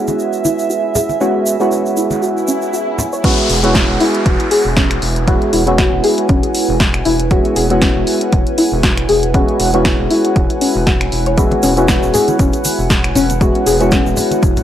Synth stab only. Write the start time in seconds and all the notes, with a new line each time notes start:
Already playing: G#3 B3 C#4 E4 F#4
1.20 G#3 B3 C#4 E4 F#4
1.60 G#3 B3 C#4 E4 F#4
3.24 G#3 B3 C#4 E4 F#4
3.63 G#3 B3 C#4 E4 F#4
5.27 G#3 B3 C#4 E4 F#4
5.66 G#3 B3 C#4 E4 F#4
7.31 G#3 B3 C#4 E4 F#4
7.70 G#3 B3 C#4 E4 F#4
9.34 G#3 B3 C#4 E4 F#4
9.73 G#3 B3 C#4 E4 F#4
11.37 G#3 B3 C#4 E4 F#4
11.77 G#3 B3 C#4 E4 F#4
13.41 G#3 B3 C#4 E4 F#4
13.80 G#3 B3 C#4 E4 F#4